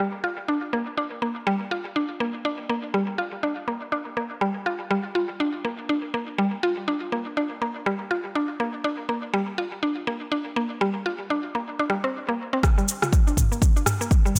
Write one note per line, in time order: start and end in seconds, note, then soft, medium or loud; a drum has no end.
0.24 0.33 F4 medium
0.48 0.58 D4 medium
0.73 0.82 A#3 medium
0.98 1.03 D4 medium
1.22 1.31 A#3 medium
1.47 1.56 G3 loud
1.71 1.81 F4 medium
1.96 2.06 D4 medium
2.20 2.30 A#3 medium
2.45 2.51 D4 medium
2.69 2.79 A#3 medium
2.94 3.03 G3 medium
3.18 3.28 F4 medium
3.43 3.53 D4 medium
3.68 3.77 A#3 medium
3.92 3.98 D4 medium
4.17 4.26 A#3 medium
4.41 4.51 G3 loud
4.66 4.76 F4 medium
4.91 5.00 G3 loud
5.15 5.25 F4 medium
5.40 5.50 D4 medium
5.65 5.74 A#3 medium
5.89 5.95 D4 medium
6.14 6.23 A#3 medium
6.38 6.48 G3 medium
6.63 6.73 F4 medium
6.88 6.97 D4 medium
7.12 7.21 A#3 medium
7.37 7.42 D4 medium
7.62 7.71 A#3 medium
7.86 7.95 G3 loud
8.11 8.20 F4 medium
8.35 8.45 D4 medium
8.60 8.69 A#3 medium
8.84 8.90 D4 medium
9.09 9.18 A#3 medium
9.34 9.43 G3 loud
9.58 9.68 F4 medium
9.83 9.92 D4 medium
10.07 10.16 A#3 medium
10.32 10.37 D4 medium
10.56 10.66 A#3 medium
10.81 10.90 G3 loud
11.06 11.15 F4 medium
11.30 11.40 D4 medium
11.55 11.64 A#3 medium
11.79 11.85 D4 medium
11.90 11.98 G3 medium
12.04 12.13 C4 medium
12.29 12.34 A#3 medium
12.53 12.59 C4 medium
12.63 13.32 G1 loud
12.63 kick loud
12.63 cross-stick medium
12.63 mid tom soft
12.63 shaker soft
12.78 12.87 G3 loud
12.78 shaker soft
12.88 shaker medium
13.02 13.12 F4 medium
13.02 cross-stick medium
13.02 mid tom soft
13.02 shaker soft
13.13 kick loud
13.13 shaker medium
13.27 13.37 D4 medium
13.27 shaker soft
13.37 13.93 D1 medium
13.37 kick medium
13.37 mid tom medium
13.37 shaker medium
13.52 13.61 A#3 medium
13.52 shaker soft
13.62 kick loud
13.62 mid tom soft
13.62 shaker soft
13.76 13.82 D4 medium
13.76 shaker soft
13.86 cross-stick medium
13.86 mid tom medium
13.86 shaker medium
14.01 14.39 G1 medium
14.01 14.10 A#3 medium
14.01 shaker soft
14.11 kick loud
14.11 shaker soft
14.25 14.35 G3 loud
14.25 shaker soft
14.35 mid tom medium
14.35 shaker medium